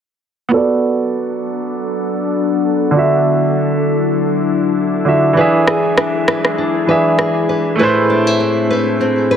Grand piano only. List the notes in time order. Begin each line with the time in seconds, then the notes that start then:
0.49 B3 F#4
0.54 A4 D5
2.91 D3 D4
2.96 F#4 E5
5.05 D3 D4 F#4 E5
5.33 E3 D4
5.38 G#4 E5
6.87 E3 D4 G#4 E5
7.76 A3 E4
7.81 B4 C5